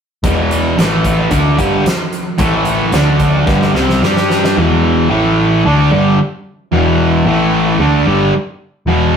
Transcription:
0.23 E1 E2 B2 E3, kick, closed hi-hat
0.51 closed hi-hat
0.77 A1 A2 E3 A3, snare, closed hi-hat
1.04 kick, closed hi-hat
1.31 D2 D3 A3 D4, kick, closed hi-hat
1.57 G1 G2 D3 G3, kick, closed hi-hat
1.86 snare, closed hi-hat
2.13 closed hi-hat
2.38 A1 A2 E3 A3, kick, closed hi-hat
2.65 closed hi-hat
2.92 D2 D3 A3 D4, snare, closed hi-hat
3.19 kick, closed hi-hat
3.46 G1 G2 D3 G3, kick, snare
3.62 snare
3.73 C2 C3 G3 C4, snare
3.89 snare
4.02 G2 G3 D4 G4, snare
4.16 snare
4.30 snare
4.44 snare
4.57 E1 E2 B2 E3
5.09 A1 A2 E3 A3
5.65 D2 D3 A3 D4
5.90 G1 G2 D3 G3
6.72 E1 E2 B2 E3
7.26 A1 A2 E3 A3
7.79 D2 D3 A3 D4
8.06 G1 G2 D3 G3
8.86 E1 E2 B2 E3

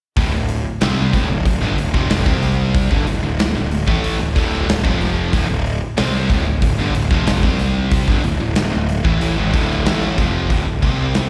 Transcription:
0.17 D1 D2 A2, kick, open hi-hat
0.33 D1 D2 A2
0.49 open hi-hat
0.81 C2 C3 G3 C4, snare, open hi-hat
1.13 D1 D2 A2, kick, open hi-hat
1.29 D1 D2 A2
1.45 D1 D2 A2, kick, open hi-hat
1.61 G1 G2 D3
1.77 D1 D2 A2, open hi-hat
1.93 F1 F2 C3 F3, kick, snare
2.10 snare, open hi-hat
2.26 C2 C3 G3 C4, kick
2.43 open hi-hat
2.75 kick, open hi-hat
2.90 G1 G2 D3, kick
3.07 D1 D2 A2, open hi-hat
3.24 D1 D2 A2
3.39 D1 D2 A2, snare, open hi-hat
3.55 D1 D2 A2, snare
3.71 open hi-hat
3.87 A1 A2 E3 A3, kick
4.04 open hi-hat
4.19 D1 D2 A2
4.35 D1 D2 A2 D3, kick, open hi-hat
4.54 snare
4.68 D1 D2 A2, snare, open hi-hat
4.84 F1 F2 C3 F3, kick
5.01 open hi-hat
5.33 D1 D2 A2, kick, open hi-hat
5.49 D1 D2 A2
5.66 open hi-hat
5.97 C2 C3 G3 C4, snare, open hi-hat
6.30 D1 D2 A2, kick, open hi-hat
6.47 D1 D2 A2
6.62 D1 D2 A2, kick, open hi-hat
6.78 G1 G2 D3
6.94 D1 D2 A2, open hi-hat
7.11 F1 F2 C3 F3, kick, snare
7.27 snare, open hi-hat
7.42 C2 C3 G3 C4, kick
7.59 open hi-hat
7.91 kick, open hi-hat
8.08 G1 G2 D3, kick
8.24 D1 D2 A2, open hi-hat
8.40 D1 D2 A2
8.55 D1 D2 A2, snare, open hi-hat
8.72 D1 D2 A2, snare
8.89 open hi-hat
9.04 A1 A2 E3, kick
9.21 A1 A2 E3, open hi-hat
9.37 G#1 G#2 D#3
9.53 D1 D2 A2 D3, kick, open hi-hat
9.71 snare
9.86 A1 A2 E3 A3, snare, open hi-hat
10.18 F1 F2 C3 F3, kick, open hi-hat
10.50 D1 D2 A2, kick, open hi-hat
10.67 D1 D2 A2
10.83 C2 C3 G3 C4, kick, open hi-hat
11.14 snare, open hi-hat

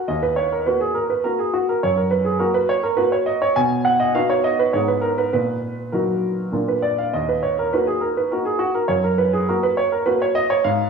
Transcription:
0.08 D#2 D#5
0.22 B4
0.36 C#5
0.52 A#4
0.66 A#3 F#4 B4
0.81 G#4
0.95 A#4
1.10 B4
1.24 A#3 F#4 A#4
1.39 G#4
1.54 F#4
1.69 A#4
1.83 F#2 C#5
1.97 A#4
2.11 B4
2.25 G#4
2.39 A#3 F#4 A#4
2.55 B4
2.69 C#5
2.83 A#4
2.97 A#3 F#4 B4
3.12 C#5
3.26 D#5
3.42 C#5
3.56 B2 G#5
3.85 F#5
4.00 D#5
4.15 B3 D#4 F#4 F5
4.29 C#5
4.44 D#5
4.59 B4
4.73 G#2 B3 D#4 G#4 C#5
4.88 B4
5.01 A#4
5.18 B4
5.33 A#2 B4
5.93 F#3 D#4 F#4 A#4
6.52 A#2 A#3 D4 F4
6.68 B4
6.82 D5
6.98 F5
7.13 D#2 D#5
7.29 B4
7.43 C#5
7.59 A#4
7.73 A#3 D#4 F#4 B4
7.87 G#4
8.01 A#4
8.17 B4
8.31 A#3 D#4 F#4 A#4
8.45 G#4
8.59 F#4
8.75 A#4
8.88 F#2 C#5
9.04 A#4
9.18 B4
9.33 G#4
9.49 A#3 F#4 A#4
9.63 B4
9.77 C#5
9.92 A#4
10.06 A#3 F#4 B4
10.22 C#5
10.35 D#5
10.50 C#5
10.64 G#2 F5

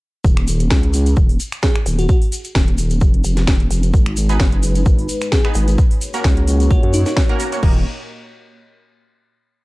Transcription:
0.24 D#1, kick, shaker
0.37 finger snap, closed hi-hat
0.48 open hi-hat, shaker
0.60 closed hi-hat, shaker
0.70 C#2, kick, snare, shaker
0.83 closed hi-hat
0.93 open hi-hat, shaker
1.06 closed hi-hat, shaker
1.16 D#1, kick, shaker
1.29 open hi-hat
1.40 open hi-hat, shaker
1.52 finger snap, closed hi-hat, shaker
1.63 G#4, kick, snare, shaker
1.76 finger snap, closed hi-hat
1.86 D#1, open hi-hat, shaker
1.99 F#4, closed hi-hat, shaker
2.09 F#4, kick, shaker
2.22 open hi-hat
2.32 open hi-hat, shaker
2.45 closed hi-hat, shaker
2.55 D#1, kick, snare, shaker
2.68 closed hi-hat
2.78 open hi-hat, shaker
2.90 closed hi-hat, shaker
3.01 F1, kick, shaker
3.14 closed hi-hat
3.24 F1, open hi-hat, shaker
3.37 snare, closed hi-hat, shaker
3.47 D#1, finger snap, kick, snare, shaker
3.60 closed hi-hat
3.71 F1, open hi-hat, shaker
3.83 closed hi-hat, shaker
3.94 G#1 G#3 D#4 B4, kick, shaker
4.06 finger snap, closed hi-hat
4.17 open hi-hat, shaker
4.29 B3 D#4 G#4 B4, closed hi-hat, shaker
4.40 F#1, kick, snare, shaker
4.52 closed hi-hat
4.63 open hi-hat, shaker
4.75 closed hi-hat, shaker
4.86 G#1, kick, shaker
4.99 open hi-hat
5.09 open hi-hat, shaker
5.21 finger snap, closed hi-hat, shaker
5.32 G#4, kick, snare, shaker
5.45 B3 D#4 G#4 B4, finger snap, closed hi-hat
5.54 G#1, open hi-hat, shaker
5.68 closed hi-hat, shaker
5.78 A#3 F#4 C#5, kick, shaker
5.91 open hi-hat
6.01 open hi-hat, shaker
6.14 A#3 C#4 F#4 A#4, closed hi-hat, shaker
6.24 C#2, kick, snare, shaker
6.37 closed hi-hat
6.48 open hi-hat, shaker
6.60 closed hi-hat, shaker
6.71 A#1 F#4, kick, shaker
6.83 F#2, closed hi-hat
6.93 D#4, open hi-hat, shaker
7.06 D#4, snare, closed hi-hat, shaker
7.17 finger snap, kick, snare, shaker
7.29 A#3 C#4 F#4 A#4, closed hi-hat
7.40 A#3 C#4 F#4 A#4, open hi-hat, shaker
7.52 A#3 C#4 F#4 C#5, closed hi-hat, shaker
7.63 D#1 A#3 D#4 G4 A#4, kick, crash

